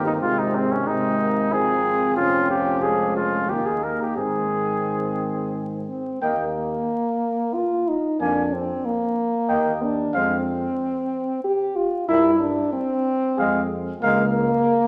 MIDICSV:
0, 0, Header, 1, 6, 480
1, 0, Start_track
1, 0, Key_signature, -4, "major"
1, 0, Tempo, 655022
1, 154, Time_signature, 3, 2, 24, 8
1, 2554, Tempo, 684151
1, 4474, Tempo, 660793
1, 4475, Key_signature, -3, "major"
1, 5434, Tempo, 648649
1, 10859, End_track
2, 0, Start_track
2, 0, Title_t, "Trumpet"
2, 0, Program_c, 0, 56
2, 48, Note_on_c, 0, 63, 54
2, 99, Note_off_c, 0, 63, 0
2, 158, Note_on_c, 0, 65, 73
2, 285, Note_on_c, 0, 63, 64
2, 296, Note_off_c, 0, 65, 0
2, 403, Note_on_c, 0, 60, 58
2, 414, Note_off_c, 0, 63, 0
2, 525, Note_on_c, 0, 61, 60
2, 536, Note_off_c, 0, 60, 0
2, 638, Note_on_c, 0, 63, 73
2, 649, Note_off_c, 0, 61, 0
2, 1116, Note_on_c, 0, 68, 73
2, 1127, Note_off_c, 0, 63, 0
2, 1585, Note_off_c, 0, 68, 0
2, 1589, Note_on_c, 0, 65, 69
2, 1824, Note_off_c, 0, 65, 0
2, 1835, Note_on_c, 0, 67, 63
2, 2069, Note_on_c, 0, 68, 65
2, 2080, Note_off_c, 0, 67, 0
2, 2311, Note_off_c, 0, 68, 0
2, 2317, Note_on_c, 0, 65, 57
2, 2561, Note_on_c, 0, 67, 54
2, 2572, Note_off_c, 0, 65, 0
2, 2677, Note_on_c, 0, 68, 49
2, 2688, Note_off_c, 0, 67, 0
2, 2798, Note_on_c, 0, 70, 52
2, 2809, Note_off_c, 0, 68, 0
2, 2915, Note_off_c, 0, 70, 0
2, 2927, Note_on_c, 0, 67, 47
2, 3029, Note_off_c, 0, 67, 0
2, 3033, Note_on_c, 0, 68, 55
2, 3977, Note_off_c, 0, 68, 0
2, 4471, Note_on_c, 0, 79, 47
2, 4641, Note_off_c, 0, 79, 0
2, 5928, Note_on_c, 0, 80, 49
2, 6091, Note_off_c, 0, 80, 0
2, 6875, Note_on_c, 0, 79, 48
2, 7045, Note_off_c, 0, 79, 0
2, 7351, Note_on_c, 0, 77, 54
2, 7521, Note_off_c, 0, 77, 0
2, 8794, Note_on_c, 0, 76, 52
2, 8963, Note_off_c, 0, 76, 0
2, 9759, Note_on_c, 0, 77, 53
2, 9925, Note_off_c, 0, 77, 0
2, 10230, Note_on_c, 0, 77, 63
2, 10399, Note_off_c, 0, 77, 0
2, 10859, End_track
3, 0, Start_track
3, 0, Title_t, "Flugelhorn"
3, 0, Program_c, 1, 56
3, 0, Note_on_c, 1, 60, 44
3, 604, Note_off_c, 1, 60, 0
3, 633, Note_on_c, 1, 60, 54
3, 867, Note_off_c, 1, 60, 0
3, 872, Note_on_c, 1, 58, 54
3, 1111, Note_off_c, 1, 58, 0
3, 1123, Note_on_c, 1, 60, 56
3, 2064, Note_on_c, 1, 61, 44
3, 2075, Note_off_c, 1, 60, 0
3, 2549, Note_on_c, 1, 63, 40
3, 2560, Note_off_c, 1, 61, 0
3, 3032, Note_on_c, 1, 60, 35
3, 3043, Note_off_c, 1, 63, 0
3, 4243, Note_off_c, 1, 60, 0
3, 4475, Note_on_c, 1, 75, 44
3, 4644, Note_off_c, 1, 75, 0
3, 5918, Note_on_c, 1, 74, 46
3, 6085, Note_off_c, 1, 74, 0
3, 6871, Note_on_c, 1, 75, 50
3, 7042, Note_off_c, 1, 75, 0
3, 7361, Note_on_c, 1, 72, 50
3, 7527, Note_off_c, 1, 72, 0
3, 8803, Note_on_c, 1, 70, 52
3, 8969, Note_off_c, 1, 70, 0
3, 9744, Note_on_c, 1, 68, 60
3, 9915, Note_off_c, 1, 68, 0
3, 10227, Note_on_c, 1, 70, 56
3, 10397, Note_off_c, 1, 70, 0
3, 10859, End_track
4, 0, Start_track
4, 0, Title_t, "French horn"
4, 0, Program_c, 2, 60
4, 0, Note_on_c, 2, 58, 50
4, 155, Note_off_c, 2, 58, 0
4, 159, Note_on_c, 2, 56, 53
4, 626, Note_off_c, 2, 56, 0
4, 634, Note_on_c, 2, 56, 54
4, 1106, Note_off_c, 2, 56, 0
4, 1111, Note_on_c, 2, 60, 57
4, 1592, Note_on_c, 2, 61, 59
4, 1603, Note_off_c, 2, 60, 0
4, 2069, Note_off_c, 2, 61, 0
4, 2078, Note_on_c, 2, 56, 51
4, 2550, Note_off_c, 2, 56, 0
4, 2570, Note_on_c, 2, 58, 44
4, 3038, Note_on_c, 2, 60, 39
4, 3048, Note_off_c, 2, 58, 0
4, 4121, Note_off_c, 2, 60, 0
4, 4240, Note_on_c, 2, 60, 43
4, 4460, Note_off_c, 2, 60, 0
4, 4477, Note_on_c, 2, 58, 64
4, 5434, Note_on_c, 2, 65, 70
4, 5445, Note_off_c, 2, 58, 0
4, 5686, Note_on_c, 2, 63, 56
4, 5697, Note_off_c, 2, 65, 0
4, 5922, Note_off_c, 2, 63, 0
4, 5927, Note_on_c, 2, 62, 65
4, 6166, Note_on_c, 2, 60, 62
4, 6177, Note_off_c, 2, 62, 0
4, 6404, Note_on_c, 2, 58, 67
4, 6415, Note_off_c, 2, 60, 0
4, 7131, Note_on_c, 2, 62, 62
4, 7142, Note_off_c, 2, 58, 0
4, 7371, Note_on_c, 2, 60, 63
4, 7383, Note_off_c, 2, 62, 0
4, 8313, Note_off_c, 2, 60, 0
4, 8318, Note_on_c, 2, 67, 71
4, 8552, Note_on_c, 2, 65, 59
4, 8563, Note_off_c, 2, 67, 0
4, 8792, Note_off_c, 2, 65, 0
4, 8796, Note_on_c, 2, 64, 80
4, 9025, Note_off_c, 2, 64, 0
4, 9029, Note_on_c, 2, 62, 71
4, 9270, Note_off_c, 2, 62, 0
4, 9273, Note_on_c, 2, 60, 78
4, 9978, Note_off_c, 2, 60, 0
4, 10224, Note_on_c, 2, 58, 87
4, 10859, Note_off_c, 2, 58, 0
4, 10859, End_track
5, 0, Start_track
5, 0, Title_t, "Trombone"
5, 0, Program_c, 3, 57
5, 0, Note_on_c, 3, 51, 46
5, 158, Note_off_c, 3, 51, 0
5, 162, Note_on_c, 3, 48, 49
5, 627, Note_off_c, 3, 48, 0
5, 636, Note_on_c, 3, 48, 54
5, 1123, Note_on_c, 3, 53, 56
5, 1134, Note_off_c, 3, 48, 0
5, 2560, Note_on_c, 3, 51, 42
5, 2571, Note_off_c, 3, 53, 0
5, 2919, Note_off_c, 3, 51, 0
5, 3038, Note_on_c, 3, 51, 35
5, 4222, Note_off_c, 3, 51, 0
5, 4476, Note_on_c, 3, 58, 45
5, 4645, Note_off_c, 3, 58, 0
5, 5919, Note_on_c, 3, 58, 49
5, 6085, Note_off_c, 3, 58, 0
5, 6884, Note_on_c, 3, 58, 50
5, 7051, Note_off_c, 3, 58, 0
5, 7363, Note_on_c, 3, 56, 50
5, 7529, Note_off_c, 3, 56, 0
5, 8806, Note_on_c, 3, 55, 55
5, 8971, Note_off_c, 3, 55, 0
5, 9761, Note_on_c, 3, 56, 62
5, 9926, Note_off_c, 3, 56, 0
5, 10236, Note_on_c, 3, 56, 60
5, 10402, Note_off_c, 3, 56, 0
5, 10859, End_track
6, 0, Start_track
6, 0, Title_t, "Tuba"
6, 0, Program_c, 4, 58
6, 0, Note_on_c, 4, 31, 46
6, 161, Note_on_c, 4, 32, 51
6, 172, Note_off_c, 4, 31, 0
6, 1591, Note_off_c, 4, 32, 0
6, 1595, Note_on_c, 4, 29, 54
6, 2555, Note_on_c, 4, 39, 43
6, 2565, Note_off_c, 4, 29, 0
6, 3030, Note_off_c, 4, 39, 0
6, 3034, Note_on_c, 4, 44, 36
6, 4219, Note_off_c, 4, 44, 0
6, 4480, Note_on_c, 4, 39, 53
6, 4879, Note_off_c, 4, 39, 0
6, 5923, Note_on_c, 4, 41, 53
6, 6319, Note_off_c, 4, 41, 0
6, 6886, Note_on_c, 4, 39, 49
6, 7284, Note_off_c, 4, 39, 0
6, 7362, Note_on_c, 4, 41, 56
6, 7759, Note_off_c, 4, 41, 0
6, 8800, Note_on_c, 4, 43, 57
6, 9200, Note_off_c, 4, 43, 0
6, 9752, Note_on_c, 4, 41, 58
6, 10152, Note_off_c, 4, 41, 0
6, 10227, Note_on_c, 4, 37, 65
6, 10629, Note_off_c, 4, 37, 0
6, 10859, End_track
0, 0, End_of_file